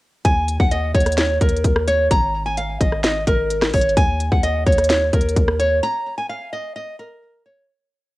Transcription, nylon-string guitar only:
0.25 0.58 G#5 loud
0.60 0.69 F#5 medium
0.71 0.91 D#5 medium
0.95 1.14 C#5 medium
1.18 1.37 C#5 medium
1.41 1.85 A#4 medium
1.88 2.07 C#5 loud
2.11 2.44 A#5 loud
2.46 2.55 G#5 medium
2.58 2.77 F5 medium
2.81 3.00 D#5 medium
3.04 3.23 D#5 medium
3.27 3.71 A#4 medium
3.74 3.93 C#5 medium
3.97 4.30 G#5 loud
4.32 4.41 F#5 medium
4.43 4.63 D#5 medium
4.66 4.86 C#5 medium
4.90 5.09 C#5 medium
5.13 5.57 A#4 medium
5.60 5.79 C#5 loud
5.83 6.16 A#5 loud
6.18 6.27 G#5 medium
6.29 6.49 F5 medium
6.53 6.72 D#5 medium
6.76 6.95 D#5 medium
6.99 7.43 A#4 medium
7.46 7.65 C#5 medium

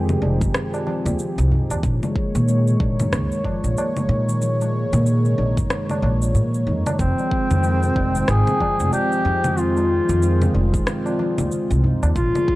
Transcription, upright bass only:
0.00 0.15 F2 medium
0.22 0.45 F1 medium
1.05 1.14 D#2 medium
1.38 1.57 C2 medium
1.70 1.79 D#2 medium
1.83 1.96 A#1 medium
2.35 2.73 A#2 loud
2.80 3.03 A#1 medium
3.12 3.25 C#2 medium
3.64 3.72 A#1 medium
4.09 4.82 A#2 medium
4.93 5.31 A#2 loud
5.38 5.61 A#1 medium
6.02 6.36 A#1 medium
6.34 6.68 A#2 medium
6.67 6.80 F2 medium
6.99 7.12 F1 medium
7.51 7.89 F2 loud
7.96 8.19 F1 medium
8.28 8.41 G#1 loud
8.80 8.88 F1 medium
9.25 9.98 F2 medium
10.09 10.47 F2 medium
10.54 10.78 F1 medium
11.38 11.47 D#2 medium
11.71 11.89 C2 medium
12.03 12.11 D#2 medium
12.16 12.28 A#1 loud

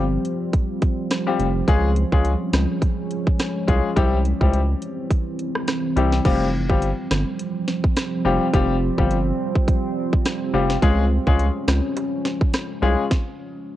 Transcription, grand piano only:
1.27 1.44 G3 medium
1.27 1.44 C4 medium
1.27 1.44 F4 medium
1.27 1.45 G4 medium
1.68 1.88 G#3 medium
1.68 1.88 C#4 medium
1.68 1.88 F4 medium
1.68 1.88 G#4 loud
2.12 2.30 G#3 medium
2.12 2.30 C#4 medium
2.12 2.30 F4 medium
2.12 2.30 G#4 medium
3.68 3.88 G#3 medium
3.68 3.88 C#4 medium
3.68 3.88 F4 medium
3.68 3.88 G#4 medium
3.96 4.16 G3 medium
3.96 4.16 C4 medium
3.96 4.17 E4 medium
3.96 4.17 G4 loud
4.41 4.59 G3 medium
4.41 4.59 C4 medium
4.41 4.59 E4 medium
4.41 4.59 G4 medium
5.96 6.16 G3 medium
5.96 6.16 C4 medium
5.96 6.17 E4 medium
5.96 6.17 G4 medium
6.25 6.45 G3 medium
6.25 6.45 C4 medium
6.25 6.45 F4 medium
6.25 6.45 G4 loud
6.69 6.87 G3 medium
6.69 6.87 C4 medium
6.69 6.87 F4 medium
6.69 6.87 G4 medium
8.25 8.45 G3 medium
8.25 8.45 C4 medium
8.25 8.45 F4 medium
8.25 8.45 G4 medium
8.54 8.74 G3 medium
8.54 8.74 C4 medium
8.54 8.74 F4 medium
8.54 8.74 G4 loud
8.98 9.16 G3 medium
8.98 9.16 C4 medium
8.98 9.16 F4 medium
8.98 9.16 G4 medium
10.53 10.74 G3 medium
10.53 10.74 C4 medium
10.53 10.74 F4 medium
10.53 10.74 G4 medium
10.82 11.02 G#3 loud
10.82 11.02 C#4 medium
10.82 11.02 F4 medium
10.82 11.02 G#4 loud
11.27 11.44 G#3 medium
11.27 11.44 C#4 medium
11.27 11.45 F4 medium
11.27 11.45 G#4 medium
12.82 13.02 G#3 medium
12.82 13.02 C#4 medium
12.82 13.02 F4 medium
12.82 13.02 G#4 medium

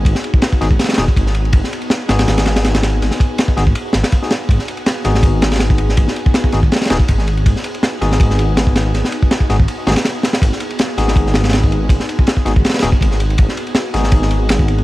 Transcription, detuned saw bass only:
0.05 0.14 G#1 loud
0.61 0.78 G#1 medium
0.98 1.07 D#1 medium
1.16 1.52 G#1 medium
1.53 1.62 G#1 loud
2.09 2.26 G#1 medium
2.27 3.00 G#1 loud
3.01 3.10 G#1 loud
3.57 3.74 G#1 medium
3.94 4.03 G#1 medium
4.49 4.58 G#1 loud
5.05 5.22 G#1 medium
5.23 5.96 G#1 loud
5.97 6.06 G#1 loud
6.53 6.70 G#1 medium
6.90 6.99 D#1 medium
7.09 7.45 G#1 medium
7.46 7.55 G#1 loud
8.01 8.18 G#1 medium
8.20 8.93 G#1 loud
8.94 9.03 G#1 loud
9.49 9.66 G#1 medium
9.87 9.95 G#1 medium
10.42 10.51 G#1 loud
10.98 11.14 G#1 medium
11.16 11.89 G#1 loud
11.89 11.99 G#1 loud
12.46 12.63 G#1 medium
12.83 12.92 D#1 medium
13.01 13.37 G#1 medium
13.39 13.48 G#1 loud
13.94 14.11 G#1 medium
14.12 14.84 G#1 loud

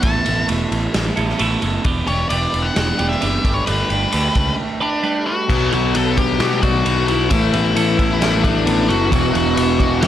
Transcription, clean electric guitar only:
0.03 0.46 A3 medium
0.03 0.26 B3 medium
0.03 0.25 E4 medium
0.03 0.23 A4 medium
0.24 0.48 B3 medium
0.24 0.49 E4 medium
0.24 0.48 A4 medium
0.47 1.37 A3 medium
0.47 1.18 B3 medium
0.47 1.16 E4 medium
0.47 1.15 A4 medium
1.16 1.40 B3 medium
1.16 1.39 E4 medium
1.16 1.40 A4 medium
1.39 1.84 A3 medium
1.39 1.63 B3 medium
1.39 1.62 E4 loud
1.39 1.61 A4 medium
1.62 1.85 B3 medium
1.62 1.84 E4 medium
1.62 1.84 A4 medium
1.85 2.29 E3 medium
1.85 2.09 B3 medium
1.85 2.08 D4 medium
1.85 2.07 G4 medium
2.07 2.31 B3 medium
2.07 2.31 D4 medium
2.07 2.32 G4 medium
2.30 3.20 E3 medium
2.30 3.00 B3 medium
2.30 2.99 D4 medium
2.30 2.97 G4 medium
2.98 3.21 B3 medium
2.98 3.22 D4 medium
2.98 3.22 G4 medium
3.21 3.43 E3 medium
3.21 3.45 B3 medium
3.21 3.44 D4 medium
3.21 3.43 G4 medium
3.43 3.65 G3 medium
3.43 3.66 A3 medium
3.43 3.66 D4 medium
3.43 3.66 G4 medium
3.43 3.67 B4 medium
3.66 4.12 G3 medium
3.66 4.10 A3 medium
3.66 3.90 D4 medium
3.66 3.89 G4 medium
3.66 3.88 B4 medium
3.89 4.11 D4 medium
3.89 4.12 G4 medium
3.89 4.13 B4 medium
4.12 5.02 A3 medium
4.12 4.82 D4 medium
4.12 4.81 G4 medium
4.12 4.79 B4 medium
4.81 5.03 D4 medium
4.81 5.03 G4 medium
4.81 5.04 B4 medium
5.03 5.47 G3 medium
5.03 5.48 A3 medium
5.03 5.28 D4 loud
5.03 5.27 G4 medium
5.03 5.25 B4 medium
5.27 5.49 D4 soft
5.27 5.49 G4 medium
5.27 5.48 B4 medium
5.50 6.63 B2 medium
5.72 6.86 B3 medium
6.17 6.62 D4 medium
6.40 7.07 F#4 medium
6.64 7.31 D4 medium
6.86 7.34 B3 medium
7.09 7.31 F#4 medium
7.31 8.44 A3 medium
7.53 8.65 B3 medium
7.76 8.20 A4 medium
7.99 8.43 E4 medium
8.21 8.88 A4 medium
8.44 9.12 E4 medium
8.66 9.33 B3 medium
8.89 9.12 A4 medium
9.11 10.07 E3 medium
9.34 10.07 B3 medium
9.79 10.07 D4 medium
10.01 10.07 G4 medium

